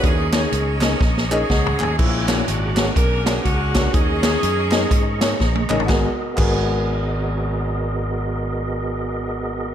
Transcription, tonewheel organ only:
0, 0, Header, 1, 2, 480
1, 0, Start_track
1, 0, Key_signature, 5, "minor"
1, 0, Tempo, 488202
1, 37, Time_signature, 4, 2, 24, 8
1, 9580, End_track
2, 0, Start_track
2, 0, Title_t, "Tonewheel organ"
2, 0, Program_c, 0, 16
2, 0, Note_on_c, 0, 82, 60
2, 26, Note_on_c, 0, 85, 69
2, 29, Note_on_c, 0, 75, 60
2, 30, Note_on_c, 0, 68, 67
2, 1914, Note_off_c, 0, 82, 0
2, 1929, Note_off_c, 0, 85, 0
2, 1930, Note_off_c, 0, 75, 0
2, 1931, Note_off_c, 0, 68, 0
2, 1953, Note_on_c, 0, 86, 76
2, 1954, Note_on_c, 0, 68, 67
2, 1954, Note_on_c, 0, 82, 57
2, 1955, Note_on_c, 0, 78, 60
2, 3852, Note_off_c, 0, 68, 0
2, 3852, Note_off_c, 0, 86, 0
2, 3853, Note_off_c, 0, 78, 0
2, 3876, Note_on_c, 0, 75, 64
2, 3878, Note_on_c, 0, 68, 64
2, 3878, Note_on_c, 0, 85, 73
2, 5753, Note_off_c, 0, 82, 0
2, 5774, Note_off_c, 0, 75, 0
2, 5775, Note_off_c, 0, 68, 0
2, 5776, Note_off_c, 0, 85, 0
2, 5795, Note_on_c, 0, 66, 55
2, 5798, Note_on_c, 0, 59, 67
2, 5798, Note_on_c, 0, 70, 63
2, 5799, Note_on_c, 0, 68, 62
2, 5800, Note_on_c, 0, 75, 73
2, 9580, Note_off_c, 0, 59, 0
2, 9580, Note_off_c, 0, 66, 0
2, 9580, Note_off_c, 0, 68, 0
2, 9580, Note_off_c, 0, 70, 0
2, 9580, Note_off_c, 0, 75, 0
2, 9580, End_track
0, 0, End_of_file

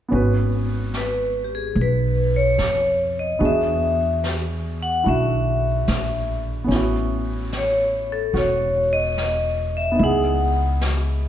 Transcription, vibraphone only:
0, 0, Header, 1, 2, 480
1, 0, Start_track
1, 0, Key_signature, 5, "minor"
1, 0, Tempo, 823045
1, 68, Time_signature, 4, 2, 24, 8
1, 6581, End_track
2, 0, Start_track
2, 0, Title_t, "Vibraphone"
2, 0, Program_c, 0, 11
2, 567, Note_on_c, 0, 71, 57
2, 836, Note_off_c, 0, 71, 0
2, 842, Note_on_c, 0, 67, 39
2, 886, Note_off_c, 0, 67, 0
2, 903, Note_on_c, 0, 68, 55
2, 1047, Note_off_c, 0, 68, 0
2, 1058, Note_on_c, 0, 71, 66
2, 1377, Note_off_c, 0, 71, 0
2, 1379, Note_on_c, 0, 73, 69
2, 1859, Note_off_c, 0, 73, 0
2, 1863, Note_on_c, 0, 75, 67
2, 2005, Note_off_c, 0, 75, 0
2, 2014, Note_on_c, 0, 76, 80
2, 2455, Note_off_c, 0, 76, 0
2, 2814, Note_on_c, 0, 78, 75
2, 2946, Note_off_c, 0, 78, 0
2, 2966, Note_on_c, 0, 76, 70
2, 3736, Note_off_c, 0, 76, 0
2, 4415, Note_on_c, 0, 73, 59
2, 4733, Note_off_c, 0, 73, 0
2, 4738, Note_on_c, 0, 69, 59
2, 4881, Note_off_c, 0, 69, 0
2, 4885, Note_on_c, 0, 73, 66
2, 5207, Note_on_c, 0, 75, 72
2, 5209, Note_off_c, 0, 73, 0
2, 5692, Note_off_c, 0, 75, 0
2, 5697, Note_on_c, 0, 76, 67
2, 5841, Note_off_c, 0, 76, 0
2, 5854, Note_on_c, 0, 78, 71
2, 6295, Note_off_c, 0, 78, 0
2, 6581, End_track
0, 0, End_of_file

